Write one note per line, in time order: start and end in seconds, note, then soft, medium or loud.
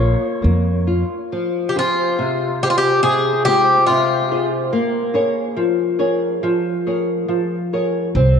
0.00 0.14 A#1 medium
0.00 0.41 A#3 medium
0.00 0.42 F4 medium
0.00 0.85 C#5 medium
0.42 1.01 F2 medium
0.42 0.86 A#3 medium
0.87 1.30 F4 medium
1.32 2.16 F3 medium
1.69 1.76 G4 medium
1.76 2.44 F4 soft
1.76 2.59 F4 medium
1.76 2.44 G#4 soft
1.76 2.45 C5 soft
2.18 3.01 C3 medium
2.63 3.30 F4 medium
2.63 2.69 G4 medium
2.63 3.30 G#4 soft
2.63 3.30 C5 medium
2.70 2.76 F4 medium
2.78 3.02 G4 medium
3.03 3.85 C3 medium
3.03 3.45 G#4 medium
3.45 4.14 G#3 soft
3.45 4.14 F4 medium
3.45 3.85 G4 loud
3.45 4.14 C5 medium
3.86 4.70 C3 medium
3.86 4.46 F4 medium
4.31 4.64 F4 medium
4.31 4.65 G#4 soft
4.31 4.64 C5 medium
4.73 5.54 A#3 medium
5.14 5.82 G#4 medium
5.14 5.82 A#4 medium
5.14 5.83 C#5 medium
5.57 6.40 F3 medium
5.99 6.68 G#4 medium
5.99 6.68 A#4 soft
5.99 6.68 C#5 medium
6.43 7.26 F3 medium
6.87 7.55 G#4 soft
6.87 7.55 A#4 soft
6.87 7.55 C#5 medium
7.28 8.13 F3 medium
7.73 8.08 G#4 soft
7.73 8.08 A#4 soft
7.73 8.08 C#5 medium
8.15 8.40 C2 medium
8.15 8.40 C4 medium